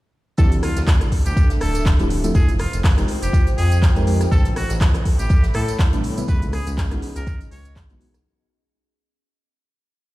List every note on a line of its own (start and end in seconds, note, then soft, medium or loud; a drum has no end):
0.38 0.70 D2 loud
0.38 1.12 F3 loud
0.38 1.12 A3 medium
0.38 1.12 C4 medium
0.38 2.97 D4 medium
0.38 1.12 E4 loud
0.38 1.12 G4 loud
0.38 0.55 A4 loud
0.38 kick loud
0.38 tambourine medium
0.38 shaker medium
0.52 2.35 A4 medium
0.52 closed hi-hat medium
0.52 closed hi-hat soft
0.52 tambourine soft
0.63 0.80 F4 medium
0.63 cross-stick medium
0.63 open hi-hat loud
0.63 shaker medium
0.76 1.07 D2 loud
0.76 snare medium
0.76 closed hi-hat medium
0.76 tambourine medium
0.87 kick loud
0.87 snare loud
0.87 clap loud
0.87 tambourine medium
0.87 shaker medium
1.01 2.35 E5 medium
1.01 cross-stick medium
1.01 closed hi-hat medium
1.01 tambourine soft
1.12 kick medium
1.12 open hi-hat loud
1.12 shaker medium
1.26 1.33 D2 medium
1.26 1.50 G4 loud
1.26 closed hi-hat medium
1.26 tambourine medium
1.37 kick loud
1.37 tambourine medium
1.37 shaker medium
1.50 snare medium
1.50 closed hi-hat soft
1.50 tambourine soft
1.61 1.93 D1 medium
1.61 1.85 A4 loud
1.61 cross-stick medium
1.61 open hi-hat loud
1.61 shaker medium
1.75 closed hi-hat medium
1.75 tambourine medium
1.85 kick loud
1.85 snare loud
1.85 clap loud
1.85 shaker medium
1.99 2.30 D1 medium
1.99 2.07 F3 medium
1.99 2.07 A3 medium
1.99 2.08 C4 medium
1.99 2.08 E4 medium
1.99 2.08 G4 loud
1.99 closed hi-hat soft
1.99 tambourine soft
2.10 open hi-hat loud
2.10 shaker medium
2.24 2.32 F3 medium
2.24 2.32 A3 medium
2.24 2.32 C4 medium
2.24 2.32 E4 medium
2.24 2.32 A4 loud
2.24 closed hi-hat medium
2.24 tambourine medium
2.35 2.67 F1 medium
2.35 4.32 F4 medium
2.35 2.52 G#4 loud
2.35 kick loud
2.35 tambourine medium
2.35 shaker medium
2.45 5.11 C5 medium
2.45 closed hi-hat medium
2.45 tambourine soft
2.59 2.77 F4 loud
2.59 cross-stick medium
2.59 open hi-hat loud
2.59 shaker medium
2.73 3.03 F1 loud
2.73 5.11 G5 medium
2.73 closed hi-hat medium
2.73 tambourine medium
2.84 kick loud
2.84 snare loud
2.84 clap loud
2.84 open hi-hat medium
2.84 tambourine medium
2.98 3.06 G#3 medium
2.98 3.06 C4 medium
2.98 3.06 D#4 medium
2.98 3.06 G4 medium
2.98 3.06 A#4 medium
2.98 cross-stick medium
2.98 closed hi-hat soft
2.98 closed hi-hat medium
2.98 tambourine soft
3.08 open hi-hat loud
3.08 shaker medium
3.22 3.30 F1 medium
3.22 3.46 G4 medium
3.22 closed hi-hat medium
3.22 closed hi-hat soft
3.22 tambourine medium
3.33 kick loud
3.33 tambourine medium
3.33 shaker medium
3.47 closed hi-hat soft
3.47 tambourine soft
3.58 3.90 F2 medium
3.58 3.82 G#4 loud
3.58 open hi-hat loud
3.58 shaker medium
3.72 closed hi-hat medium
3.72 tambourine medium
3.82 kick loud
3.82 snare loud
3.82 clap loud
3.82 tambourine medium
3.82 shaker medium
3.96 4.26 F2 medium
3.96 4.05 G#3 medium
3.96 4.05 C4 medium
3.96 4.05 D#4 medium
3.96 4.05 G4 medium
3.96 4.06 A#4 medium
3.96 closed hi-hat soft
3.96 tambourine soft
4.07 4.23 G#3 medium
4.07 4.23 C4 medium
4.07 4.23 D#4 medium
4.07 4.23 G4 medium
4.07 4.23 A#4 medium
4.07 open hi-hat loud
4.07 shaker medium
4.20 cross-stick medium
4.20 snare soft
4.20 closed hi-hat medium
4.20 tambourine medium
4.32 4.63 A1 loud
4.32 4.49 A4 loud
4.32 6.28 A4 medium
4.32 kick loud
4.32 tambourine soft
4.32 shaker medium
4.45 closed hi-hat medium
4.45 closed hi-hat soft
4.45 tambourine soft
4.56 4.73 F#4 medium
4.56 cross-stick medium
4.56 open hi-hat loud
4.56 shaker medium
4.68 5.00 A1 loud
4.68 6.28 E5 medium
4.68 7.08 B5 medium
4.68 snare medium
4.68 closed hi-hat medium
4.68 tambourine medium
4.81 kick loud
4.81 snare loud
4.81 clap loud
4.81 tambourine medium
4.81 shaker medium
4.94 cross-stick medium
4.94 closed hi-hat soft
4.94 tambourine soft
5.05 kick medium
5.05 open hi-hat loud
5.05 shaker medium
5.19 5.27 A1 medium
5.19 5.43 G4 medium
5.19 closed hi-hat medium
5.19 tambourine medium
5.30 kick loud
5.30 tambourine medium
5.30 shaker medium
5.43 snare medium
5.43 closed hi-hat soft
5.43 tambourine soft
5.54 5.86 A2 medium
5.54 5.79 A4 loud
5.54 cross-stick medium
5.54 open hi-hat loud
5.54 shaker medium
5.68 closed hi-hat medium
5.68 tambourine medium
5.79 kick loud
5.79 snare loud
5.79 clap loud
5.79 tambourine medium
5.79 shaker medium
5.93 6.23 A2 medium
5.93 6.01 C3 medium
5.93 6.01 E3 medium
5.93 6.01 G3 medium
5.93 6.01 B3 medium
5.93 6.01 D4 medium
5.93 closed hi-hat soft
5.93 tambourine soft
6.04 open hi-hat loud
6.04 shaker medium
6.17 6.25 C3 loud
6.17 6.26 E3 medium
6.17 6.26 G3 medium
6.17 6.26 B3 medium
6.17 6.26 E4 loud
6.17 closed hi-hat medium
6.17 tambourine medium
6.28 6.60 C#2 loud
6.28 8.25 C#4 medium
6.28 6.45 B4 medium
6.28 kick loud
6.28 tambourine medium
6.28 shaker medium
6.42 closed hi-hat medium
6.42 tambourine soft
6.51 8.25 G#4 medium
6.51 6.70 G#4 loud
6.51 cross-stick medium
6.51 open hi-hat loud
6.51 shaker medium
6.67 6.97 C#2 loud
6.67 closed hi-hat medium
6.67 tambourine medium
6.78 kick loud
6.78 snare loud
6.78 clap loud
6.78 open hi-hat medium
6.78 tambourine medium
6.89 6.99 E3 medium
6.89 6.99 G#3 medium
6.89 6.99 B3 medium
6.89 6.99 D#4 medium
6.89 6.99 F#4 medium
6.89 8.25 D#5 medium
6.89 cross-stick medium
6.89 closed hi-hat soft
6.89 closed hi-hat medium
6.89 tambourine soft
7.02 open hi-hat loud
7.02 shaker medium
7.15 7.24 C#2 medium
7.15 7.40 A#4 loud
7.15 closed hi-hat soft
7.15 closed hi-hat medium
7.15 tambourine medium
7.27 kick loud
7.27 tambourine medium
7.27 shaker medium
7.41 closed hi-hat soft
7.41 tambourine soft
7.51 7.91 C#2 medium
7.51 7.76 C#5 loud
7.51 open hi-hat loud
7.51 shaker medium
7.65 closed hi-hat medium
7.65 tambourine medium
7.76 kick loud
7.76 snare loud
7.76 clap loud
7.76 tambourine medium
7.76 shaker medium
7.89 8.20 B1 medium
7.89 7.99 E3 medium
7.89 7.99 G#3 medium
7.89 7.99 B3 medium
7.89 7.99 D#4 medium
7.89 7.99 F#4 loud
7.89 closed hi-hat soft
7.89 tambourine soft
8.00 8.16 E3 medium
8.00 8.16 G#3 medium
8.00 8.16 B3 medium
8.00 8.16 D#4 medium
8.00 8.16 F#4 medium
8.00 open hi-hat loud
8.00 shaker medium
8.14 cross-stick medium
8.14 snare medium
8.14 closed hi-hat medium
8.14 tambourine medium